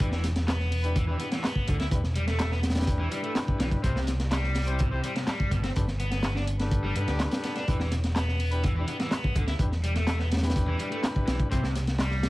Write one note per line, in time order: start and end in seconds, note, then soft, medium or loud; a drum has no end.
0.00 1.14 E1 loud
0.00 0.15 D4 loud
0.00 0.15 E4 medium
0.00 0.15 G4 medium
0.00 0.15 B4 loud
0.00 kick loud
0.00 closed hi-hat loud
0.12 0.23 E3 medium
0.12 snare medium
0.24 snare soft
0.24 closed hi-hat medium
0.36 snare soft
0.36 closed hi-hat soft
0.48 0.95 B3 medium
0.48 snare loud
0.48 clap loud
0.48 closed hi-hat soft
0.48 closed hi-hat medium
0.60 snare soft
0.72 closed hi-hat medium
0.72 open hi-hat medium
0.84 0.99 D4 loud
0.84 0.99 E4 medium
0.84 0.99 G4 medium
0.84 0.99 B4 loud
0.84 closed hi-hat soft
0.96 1.04 E3 loud
0.96 kick loud
0.96 closed hi-hat medium
0.96 closed hi-hat soft
1.08 1.19 E3 medium
1.08 1.17 D4 medium
1.08 1.17 E4 medium
1.08 1.17 G4 medium
1.08 1.17 B4 loud
1.19 1.28 B3 loud
1.19 1.29 D4 medium
1.19 1.29 E4 medium
1.19 1.29 G4 medium
1.19 1.29 B4 medium
1.19 closed hi-hat medium
1.32 1.43 E3 medium
1.32 snare medium
1.32 closed hi-hat soft
1.43 1.66 B3 medium
1.43 snare loud
1.43 clap loud
1.43 closed hi-hat soft
1.43 closed hi-hat loud
1.55 kick medium
1.68 1.85 D2 medium
1.68 1.76 D3 medium
1.68 kick loud
1.68 closed hi-hat medium
1.80 1.85 E4 loud
1.80 snare medium
1.80 closed hi-hat soft
1.91 3.06 E1 loud
1.91 2.02 D4 medium
1.91 2.02 E4 medium
1.91 2.02 G4 medium
1.91 2.02 B4 loud
1.91 kick loud
1.91 closed hi-hat medium
1.91 closed hi-hat soft
2.04 snare soft
2.15 2.27 G3 medium
2.15 closed hi-hat medium
2.27 2.50 A3 medium
2.27 snare soft
2.27 closed hi-hat soft
2.39 snare loud
2.39 clap loud
2.39 closed hi-hat loud
2.39 closed hi-hat soft
2.52 2.60 B3 medium
2.52 snare soft
2.63 snare medium
2.63 closed hi-hat medium
2.70 snare medium
2.70 closed hi-hat medium
2.75 3.09 D4 medium
2.75 3.09 E4 medium
2.75 3.09 G4 medium
2.75 3.09 B4 medium
2.75 snare loud
2.75 closed hi-hat medium
2.75 closed hi-hat soft
2.81 snare medium
2.81 closed hi-hat medium
2.87 kick loud
2.87 closed hi-hat medium
2.87 closed hi-hat soft
2.99 3.11 E3 loud
3.11 3.22 G3 medium
3.11 3.81 D4 medium
3.11 3.81 E4 medium
3.11 3.81 G4 medium
3.11 3.81 B4 loud
3.11 closed hi-hat medium
3.23 3.32 A3 loud
3.23 closed hi-hat soft
3.35 snare loud
3.35 clap loud
3.35 closed hi-hat medium
3.35 closed hi-hat soft
3.48 kick loud
3.60 3.76 B1 loud
3.60 3.68 E3 medium
3.60 snare loud
3.60 closed hi-hat medium
3.71 kick medium
3.71 closed hi-hat soft
3.83 4.98 C2 loud
3.83 3.92 C3 medium
3.83 3.99 C4 medium
3.83 3.99 E4 medium
3.83 3.99 G4 medium
3.83 3.99 C5 loud
3.83 kick loud
3.83 closed hi-hat medium
3.83 closed hi-hat soft
3.95 4.07 C3 medium
3.95 snare medium
4.07 snare soft
4.07 closed hi-hat medium
4.20 snare soft
4.20 closed hi-hat soft
4.31 4.78 G3 medium
4.31 snare loud
4.31 clap loud
4.31 closed hi-hat medium
4.31 closed hi-hat soft
4.44 snare soft
4.55 snare soft
4.55 closed hi-hat medium
4.55 open hi-hat medium
4.67 4.83 C4 loud
4.67 4.83 E4 medium
4.67 4.83 G4 medium
4.67 4.83 C5 loud
4.67 closed hi-hat soft
4.79 4.88 C3 loud
4.79 kick loud
4.79 closed hi-hat medium
4.79 closed hi-hat soft
4.91 5.03 C3 medium
4.91 5.01 C4 loud
4.91 5.01 E4 medium
4.91 5.01 G4 medium
4.91 5.01 C5 loud
5.03 5.12 G3 loud
5.03 5.13 C4 medium
5.03 5.13 E4 medium
5.03 5.13 G4 medium
5.03 5.13 C5 medium
5.03 closed hi-hat medium
5.15 5.26 C3 medium
5.15 snare medium
5.15 closed hi-hat soft
5.27 5.50 G3 medium
5.27 snare loud
5.27 clap loud
5.27 closed hi-hat medium
5.27 closed hi-hat soft
5.40 kick loud
5.51 5.68 G1 medium
5.51 5.60 B2 medium
5.51 kick loud
5.51 closed hi-hat medium
5.63 5.68 C4 loud
5.63 snare medium
5.63 closed hi-hat soft
5.76 6.90 G1 loud
5.76 5.86 D4 medium
5.76 5.86 G4 medium
5.76 5.85 A4 medium
5.76 5.86 B4 loud
5.76 kick loud
5.76 closed hi-hat soft
5.76 closed hi-hat medium
5.88 snare soft
6.00 6.11 B3 medium
6.00 closed hi-hat medium
6.12 6.35 B3 medium
6.12 snare soft
6.12 closed hi-hat soft
6.23 snare loud
6.23 clap loud
6.23 closed hi-hat soft
6.23 closed hi-hat medium
6.36 6.44 D4 medium
6.36 snare medium
6.47 closed hi-hat medium
6.60 6.93 D4 medium
6.60 6.93 G4 medium
6.60 6.93 A4 medium
6.60 6.93 B4 loud
6.60 snare soft
6.60 closed hi-hat soft
6.71 kick loud
6.71 closed hi-hat medium
6.71 closed hi-hat soft
6.84 6.95 G3 loud
6.96 7.04 G2 medium
6.96 7.07 B3 medium
6.96 7.65 D4 loud
6.96 7.65 G4 medium
6.96 7.65 A4 medium
6.96 7.65 B4 loud
6.96 closed hi-hat medium
7.08 7.24 D2 medium
7.08 7.19 G4 medium
7.08 snare soft
7.08 closed hi-hat soft
7.19 snare loud
7.19 clap loud
7.19 closed hi-hat medium
7.19 closed hi-hat soft
7.31 snare loud
7.31 closed hi-hat medium
7.44 7.55 B3 medium
7.44 snare medium
7.44 closed hi-hat medium
7.56 7.67 D4 medium
7.56 snare soft
7.56 closed hi-hat soft
7.68 8.82 E1 loud
7.68 7.76 E3 medium
7.68 7.83 D4 medium
7.68 7.83 E4 medium
7.68 7.83 G4 medium
7.68 7.83 B4 loud
7.68 kick loud
7.68 closed hi-hat soft
7.68 closed hi-hat medium
7.80 7.91 E3 medium
7.80 snare soft
7.92 snare soft
7.92 closed hi-hat medium
8.04 snare soft
8.04 closed hi-hat soft
8.16 8.63 B3 medium
8.16 snare loud
8.16 clap loud
8.16 closed hi-hat soft
8.16 closed hi-hat medium
8.29 snare soft
8.40 closed hi-hat medium
8.40 open hi-hat medium
8.52 8.67 D4 loud
8.52 8.67 E4 medium
8.52 8.67 G4 medium
8.52 8.67 B4 loud
8.52 closed hi-hat soft
8.63 8.72 E3 medium
8.63 kick loud
8.63 closed hi-hat medium
8.63 closed hi-hat soft
8.76 8.87 E3 medium
8.76 8.85 D4 loud
8.76 8.85 E4 medium
8.76 8.85 G4 medium
8.76 8.85 B4 loud
8.88 8.96 B3 loud
8.88 8.98 D4 medium
8.88 8.98 E4 medium
8.88 8.98 G4 medium
8.88 8.98 B4 medium
8.88 closed hi-hat medium
9.00 9.11 E3 medium
9.00 snare medium
9.00 closed hi-hat soft
9.11 9.35 B3 medium
9.11 snare loud
9.11 clap loud
9.11 closed hi-hat soft
9.11 closed hi-hat loud
9.24 kick loud
9.35 9.52 D2 medium
9.35 9.44 D3 medium
9.35 kick loud
9.35 closed hi-hat medium
9.47 9.53 E4 loud
9.47 snare medium
9.47 closed hi-hat soft
9.59 10.73 E1 loud
9.59 9.70 D4 medium
9.59 9.70 E4 medium
9.59 9.70 G4 medium
9.59 9.70 B4 medium
9.59 kick loud
9.59 closed hi-hat medium
9.59 closed hi-hat soft
9.72 snare soft
9.84 9.94 G3 medium
9.84 closed hi-hat medium
9.96 10.18 A3 medium
9.96 snare soft
9.96 closed hi-hat soft
10.07 snare loud
10.07 clap loud
10.07 closed hi-hat loud
10.07 closed hi-hat soft
10.19 10.28 B3 medium
10.19 snare medium
10.31 snare medium
10.31 closed hi-hat medium
10.37 snare medium
10.37 closed hi-hat medium
10.43 10.77 D4 medium
10.43 10.77 E4 medium
10.43 10.77 G4 medium
10.43 10.77 B4 loud
10.43 snare medium
10.43 closed hi-hat soft
10.43 closed hi-hat medium
10.50 snare medium
10.50 closed hi-hat medium
10.56 kick loud
10.56 closed hi-hat soft
10.56 closed hi-hat medium
10.68 10.79 E3 loud
10.79 10.90 G3 medium
10.79 11.49 D4 medium
10.79 11.49 E4 medium
10.79 11.49 G4 medium
10.79 11.49 B4 loud
10.79 closed hi-hat medium
10.91 11.00 A3 loud
10.91 closed hi-hat soft
11.03 snare loud
11.03 clap loud
11.03 closed hi-hat loud
11.03 closed hi-hat soft
11.16 kick loud
11.27 11.44 B1 loud
11.27 11.36 E3 medium
11.27 snare loud
11.27 closed hi-hat medium
11.40 kick medium
11.40 closed hi-hat soft
11.51 12.29 C2 loud
11.51 11.59 C3 medium
11.51 11.67 C4 loud
11.51 11.67 E4 medium
11.51 11.67 G4 medium
11.51 11.67 C5 loud
11.51 kick loud
11.51 closed hi-hat soft
11.51 closed hi-hat medium
11.63 11.75 C3 medium
11.63 snare medium
11.76 snare medium
11.76 closed hi-hat medium
11.87 snare medium
11.87 closed hi-hat soft
11.99 12.29 G3 medium
11.99 snare loud
11.99 clap loud
11.99 closed hi-hat soft
11.99 closed hi-hat medium
12.11 snare soft
12.23 snare loud
12.23 closed hi-hat medium